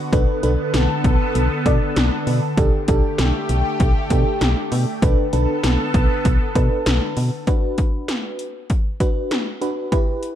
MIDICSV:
0, 0, Header, 1, 5, 480
1, 0, Start_track
1, 0, Key_signature, 2, "minor"
1, 0, Tempo, 612245
1, 99, Time_signature, 4, 2, 24, 8
1, 8116, End_track
2, 0, Start_track
2, 0, Title_t, "FM electric piano"
2, 0, Program_c, 0, 5
2, 101, Note_on_c, 0, 62, 89
2, 101, Note_on_c, 0, 69, 80
2, 101, Note_on_c, 0, 71, 99
2, 295, Note_off_c, 0, 69, 0
2, 295, Note_off_c, 0, 71, 0
2, 296, Note_off_c, 0, 62, 0
2, 339, Note_on_c, 0, 62, 88
2, 339, Note_on_c, 0, 69, 78
2, 339, Note_on_c, 0, 71, 92
2, 1121, Note_off_c, 0, 62, 0
2, 1121, Note_off_c, 0, 69, 0
2, 1121, Note_off_c, 0, 71, 0
2, 1299, Note_on_c, 0, 62, 80
2, 1299, Note_on_c, 0, 69, 75
2, 1300, Note_on_c, 0, 74, 90
2, 1886, Note_off_c, 0, 62, 0
2, 1886, Note_off_c, 0, 69, 0
2, 1886, Note_off_c, 0, 74, 0
2, 2019, Note_on_c, 0, 69, 99
2, 2020, Note_on_c, 0, 62, 91
2, 2020, Note_on_c, 0, 67, 84
2, 2214, Note_off_c, 0, 69, 0
2, 2215, Note_off_c, 0, 62, 0
2, 2215, Note_off_c, 0, 67, 0
2, 2259, Note_on_c, 0, 62, 87
2, 2259, Note_on_c, 0, 67, 78
2, 2259, Note_on_c, 0, 69, 96
2, 3041, Note_off_c, 0, 62, 0
2, 3041, Note_off_c, 0, 67, 0
2, 3041, Note_off_c, 0, 69, 0
2, 3219, Note_on_c, 0, 62, 81
2, 3219, Note_on_c, 0, 67, 75
2, 3219, Note_on_c, 0, 69, 91
2, 3805, Note_off_c, 0, 67, 0
2, 3805, Note_off_c, 0, 69, 0
2, 3806, Note_off_c, 0, 62, 0
2, 3940, Note_on_c, 0, 71, 96
2, 3941, Note_on_c, 0, 62, 89
2, 3941, Note_on_c, 0, 69, 80
2, 4135, Note_off_c, 0, 69, 0
2, 4135, Note_off_c, 0, 71, 0
2, 4136, Note_off_c, 0, 62, 0
2, 4179, Note_on_c, 0, 62, 87
2, 4179, Note_on_c, 0, 69, 79
2, 4179, Note_on_c, 0, 71, 97
2, 4961, Note_off_c, 0, 62, 0
2, 4961, Note_off_c, 0, 69, 0
2, 4961, Note_off_c, 0, 71, 0
2, 5140, Note_on_c, 0, 62, 81
2, 5140, Note_on_c, 0, 69, 72
2, 5140, Note_on_c, 0, 71, 89
2, 5726, Note_off_c, 0, 62, 0
2, 5726, Note_off_c, 0, 69, 0
2, 5726, Note_off_c, 0, 71, 0
2, 5858, Note_on_c, 0, 62, 80
2, 5859, Note_on_c, 0, 66, 71
2, 5859, Note_on_c, 0, 71, 84
2, 6641, Note_off_c, 0, 62, 0
2, 6641, Note_off_c, 0, 66, 0
2, 6641, Note_off_c, 0, 71, 0
2, 7058, Note_on_c, 0, 66, 67
2, 7059, Note_on_c, 0, 62, 73
2, 7059, Note_on_c, 0, 71, 81
2, 7450, Note_off_c, 0, 62, 0
2, 7450, Note_off_c, 0, 66, 0
2, 7450, Note_off_c, 0, 71, 0
2, 7538, Note_on_c, 0, 62, 76
2, 7538, Note_on_c, 0, 66, 72
2, 7539, Note_on_c, 0, 71, 88
2, 7734, Note_off_c, 0, 62, 0
2, 7734, Note_off_c, 0, 66, 0
2, 7734, Note_off_c, 0, 71, 0
2, 7777, Note_on_c, 0, 67, 74
2, 7778, Note_on_c, 0, 64, 81
2, 7778, Note_on_c, 0, 71, 90
2, 8116, Note_off_c, 0, 64, 0
2, 8116, Note_off_c, 0, 67, 0
2, 8116, Note_off_c, 0, 71, 0
2, 8116, End_track
3, 0, Start_track
3, 0, Title_t, "Analog synth pad"
3, 0, Program_c, 1, 89
3, 0, Note_on_c, 1, 50, 82
3, 0, Note_on_c, 1, 59, 75
3, 0, Note_on_c, 1, 66, 87
3, 80, Note_off_c, 1, 66, 0
3, 81, Note_off_c, 1, 59, 0
3, 101, Note_on_c, 1, 69, 88
3, 102, Note_on_c, 1, 59, 75
3, 2001, Note_off_c, 1, 59, 0
3, 2001, Note_off_c, 1, 69, 0
3, 2020, Note_on_c, 1, 67, 89
3, 2021, Note_on_c, 1, 57, 72
3, 3920, Note_off_c, 1, 67, 0
3, 3921, Note_off_c, 1, 57, 0
3, 3940, Note_on_c, 1, 59, 73
3, 3940, Note_on_c, 1, 69, 89
3, 5829, Note_off_c, 1, 50, 0
3, 5840, Note_off_c, 1, 59, 0
3, 5840, Note_off_c, 1, 69, 0
3, 8116, End_track
4, 0, Start_track
4, 0, Title_t, "FM bass"
4, 0, Program_c, 2, 39
4, 99, Note_on_c, 2, 35, 112
4, 205, Note_off_c, 2, 35, 0
4, 340, Note_on_c, 2, 35, 99
4, 446, Note_off_c, 2, 35, 0
4, 580, Note_on_c, 2, 35, 107
4, 686, Note_off_c, 2, 35, 0
4, 818, Note_on_c, 2, 35, 100
4, 925, Note_off_c, 2, 35, 0
4, 1059, Note_on_c, 2, 35, 110
4, 1165, Note_off_c, 2, 35, 0
4, 1299, Note_on_c, 2, 47, 101
4, 1405, Note_off_c, 2, 47, 0
4, 1540, Note_on_c, 2, 35, 105
4, 1646, Note_off_c, 2, 35, 0
4, 1779, Note_on_c, 2, 47, 93
4, 1885, Note_off_c, 2, 47, 0
4, 2019, Note_on_c, 2, 35, 110
4, 2125, Note_off_c, 2, 35, 0
4, 2260, Note_on_c, 2, 35, 95
4, 2366, Note_off_c, 2, 35, 0
4, 2500, Note_on_c, 2, 35, 107
4, 2606, Note_off_c, 2, 35, 0
4, 2739, Note_on_c, 2, 35, 100
4, 2845, Note_off_c, 2, 35, 0
4, 2980, Note_on_c, 2, 35, 107
4, 3086, Note_off_c, 2, 35, 0
4, 3219, Note_on_c, 2, 47, 97
4, 3325, Note_off_c, 2, 47, 0
4, 3459, Note_on_c, 2, 35, 110
4, 3565, Note_off_c, 2, 35, 0
4, 3700, Note_on_c, 2, 47, 106
4, 3806, Note_off_c, 2, 47, 0
4, 3938, Note_on_c, 2, 35, 107
4, 4045, Note_off_c, 2, 35, 0
4, 4179, Note_on_c, 2, 35, 107
4, 4285, Note_off_c, 2, 35, 0
4, 4420, Note_on_c, 2, 35, 104
4, 4526, Note_off_c, 2, 35, 0
4, 4659, Note_on_c, 2, 35, 108
4, 4765, Note_off_c, 2, 35, 0
4, 4901, Note_on_c, 2, 35, 98
4, 5006, Note_off_c, 2, 35, 0
4, 5139, Note_on_c, 2, 47, 98
4, 5245, Note_off_c, 2, 47, 0
4, 5380, Note_on_c, 2, 35, 101
4, 5486, Note_off_c, 2, 35, 0
4, 5621, Note_on_c, 2, 47, 97
4, 5726, Note_off_c, 2, 47, 0
4, 8116, End_track
5, 0, Start_track
5, 0, Title_t, "Drums"
5, 99, Note_on_c, 9, 36, 114
5, 100, Note_on_c, 9, 42, 81
5, 177, Note_off_c, 9, 36, 0
5, 178, Note_off_c, 9, 42, 0
5, 338, Note_on_c, 9, 42, 82
5, 417, Note_off_c, 9, 42, 0
5, 578, Note_on_c, 9, 38, 117
5, 580, Note_on_c, 9, 42, 77
5, 656, Note_off_c, 9, 38, 0
5, 659, Note_off_c, 9, 42, 0
5, 818, Note_on_c, 9, 36, 96
5, 819, Note_on_c, 9, 42, 74
5, 897, Note_off_c, 9, 36, 0
5, 897, Note_off_c, 9, 42, 0
5, 1060, Note_on_c, 9, 42, 82
5, 1138, Note_off_c, 9, 42, 0
5, 1299, Note_on_c, 9, 36, 86
5, 1299, Note_on_c, 9, 42, 77
5, 1377, Note_off_c, 9, 36, 0
5, 1378, Note_off_c, 9, 42, 0
5, 1540, Note_on_c, 9, 42, 71
5, 1541, Note_on_c, 9, 38, 123
5, 1618, Note_off_c, 9, 42, 0
5, 1619, Note_off_c, 9, 38, 0
5, 1779, Note_on_c, 9, 46, 74
5, 1858, Note_off_c, 9, 46, 0
5, 2018, Note_on_c, 9, 36, 114
5, 2018, Note_on_c, 9, 42, 82
5, 2097, Note_off_c, 9, 36, 0
5, 2097, Note_off_c, 9, 42, 0
5, 2257, Note_on_c, 9, 42, 87
5, 2260, Note_on_c, 9, 36, 99
5, 2335, Note_off_c, 9, 42, 0
5, 2339, Note_off_c, 9, 36, 0
5, 2496, Note_on_c, 9, 38, 118
5, 2499, Note_on_c, 9, 42, 77
5, 2575, Note_off_c, 9, 38, 0
5, 2577, Note_off_c, 9, 42, 0
5, 2737, Note_on_c, 9, 42, 77
5, 2816, Note_off_c, 9, 42, 0
5, 2979, Note_on_c, 9, 42, 81
5, 2980, Note_on_c, 9, 36, 97
5, 3057, Note_off_c, 9, 42, 0
5, 3059, Note_off_c, 9, 36, 0
5, 3217, Note_on_c, 9, 42, 78
5, 3218, Note_on_c, 9, 36, 85
5, 3296, Note_off_c, 9, 42, 0
5, 3297, Note_off_c, 9, 36, 0
5, 3458, Note_on_c, 9, 42, 72
5, 3460, Note_on_c, 9, 38, 124
5, 3537, Note_off_c, 9, 42, 0
5, 3538, Note_off_c, 9, 38, 0
5, 3698, Note_on_c, 9, 46, 75
5, 3777, Note_off_c, 9, 46, 0
5, 3938, Note_on_c, 9, 36, 115
5, 3938, Note_on_c, 9, 42, 81
5, 4017, Note_off_c, 9, 36, 0
5, 4017, Note_off_c, 9, 42, 0
5, 4177, Note_on_c, 9, 42, 84
5, 4256, Note_off_c, 9, 42, 0
5, 4418, Note_on_c, 9, 38, 119
5, 4420, Note_on_c, 9, 42, 79
5, 4496, Note_off_c, 9, 38, 0
5, 4498, Note_off_c, 9, 42, 0
5, 4658, Note_on_c, 9, 36, 102
5, 4659, Note_on_c, 9, 42, 77
5, 4737, Note_off_c, 9, 36, 0
5, 4737, Note_off_c, 9, 42, 0
5, 4900, Note_on_c, 9, 42, 80
5, 4901, Note_on_c, 9, 36, 95
5, 4978, Note_off_c, 9, 42, 0
5, 4979, Note_off_c, 9, 36, 0
5, 5139, Note_on_c, 9, 36, 87
5, 5139, Note_on_c, 9, 42, 78
5, 5217, Note_off_c, 9, 36, 0
5, 5217, Note_off_c, 9, 42, 0
5, 5379, Note_on_c, 9, 42, 72
5, 5381, Note_on_c, 9, 38, 125
5, 5458, Note_off_c, 9, 42, 0
5, 5459, Note_off_c, 9, 38, 0
5, 5619, Note_on_c, 9, 46, 77
5, 5697, Note_off_c, 9, 46, 0
5, 5858, Note_on_c, 9, 42, 72
5, 5859, Note_on_c, 9, 36, 105
5, 5936, Note_off_c, 9, 42, 0
5, 5937, Note_off_c, 9, 36, 0
5, 6098, Note_on_c, 9, 42, 77
5, 6101, Note_on_c, 9, 36, 88
5, 6176, Note_off_c, 9, 42, 0
5, 6179, Note_off_c, 9, 36, 0
5, 6338, Note_on_c, 9, 38, 106
5, 6340, Note_on_c, 9, 42, 70
5, 6416, Note_off_c, 9, 38, 0
5, 6418, Note_off_c, 9, 42, 0
5, 6578, Note_on_c, 9, 42, 71
5, 6656, Note_off_c, 9, 42, 0
5, 6819, Note_on_c, 9, 42, 75
5, 6821, Note_on_c, 9, 36, 89
5, 6897, Note_off_c, 9, 42, 0
5, 6899, Note_off_c, 9, 36, 0
5, 7058, Note_on_c, 9, 42, 69
5, 7059, Note_on_c, 9, 36, 75
5, 7137, Note_off_c, 9, 36, 0
5, 7137, Note_off_c, 9, 42, 0
5, 7299, Note_on_c, 9, 42, 65
5, 7301, Note_on_c, 9, 38, 110
5, 7378, Note_off_c, 9, 42, 0
5, 7379, Note_off_c, 9, 38, 0
5, 7539, Note_on_c, 9, 42, 70
5, 7617, Note_off_c, 9, 42, 0
5, 7778, Note_on_c, 9, 36, 101
5, 7778, Note_on_c, 9, 42, 76
5, 7857, Note_off_c, 9, 36, 0
5, 7857, Note_off_c, 9, 42, 0
5, 8018, Note_on_c, 9, 42, 78
5, 8096, Note_off_c, 9, 42, 0
5, 8116, End_track
0, 0, End_of_file